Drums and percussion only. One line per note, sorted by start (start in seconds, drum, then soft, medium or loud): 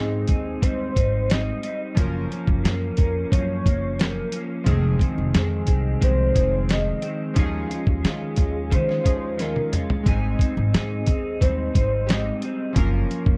0.28 kick medium
0.28 closed hi-hat medium
0.62 kick medium
0.62 closed hi-hat medium
0.96 kick medium
0.96 closed hi-hat medium
1.30 snare loud
1.30 closed hi-hat medium
1.63 closed hi-hat medium
1.97 kick loud
1.97 closed hi-hat medium
2.32 closed hi-hat medium
2.47 kick medium
2.65 snare loud
2.65 closed hi-hat medium
2.97 kick medium
2.97 closed hi-hat medium
3.32 kick medium
3.32 closed hi-hat medium
3.66 kick medium
3.66 closed hi-hat medium
3.99 snare loud
3.99 closed hi-hat medium
4.32 closed hi-hat medium
4.66 kick loud
4.66 closed hi-hat medium
4.99 kick medium
4.99 closed hi-hat medium
5.34 snare loud
5.34 closed hi-hat medium
5.67 kick medium
5.67 closed hi-hat medium
6.02 kick medium
6.02 closed hi-hat medium
6.36 kick medium
6.36 closed hi-hat medium
6.69 snare loud
6.69 closed hi-hat medium
7.02 closed hi-hat medium
7.36 kick loud
7.36 closed hi-hat medium
7.71 closed hi-hat medium
7.87 kick medium
8.05 snare loud
8.05 closed hi-hat medium
8.36 kick medium
8.36 closed hi-hat medium
8.71 kick medium
8.71 closed hi-hat medium
8.89 snare soft
9.05 kick medium
9.05 closed hi-hat medium
9.39 snare soft
9.39 closed hi-hat medium
9.56 high tom medium
9.73 closed hi-hat medium
9.73 mid tom medium
9.90 floor tom medium
10.06 kick loud
10.06 closed hi-hat medium
10.39 kick medium
10.39 closed hi-hat medium
10.74 snare loud
10.74 closed hi-hat medium
11.06 kick medium
11.06 closed hi-hat medium
11.41 kick medium
11.41 closed hi-hat medium
11.75 kick medium
11.75 closed hi-hat medium
12.09 snare loud
12.09 closed hi-hat medium
12.42 closed hi-hat medium
12.76 kick loud
12.76 closed hi-hat medium
13.11 closed hi-hat medium
13.26 kick medium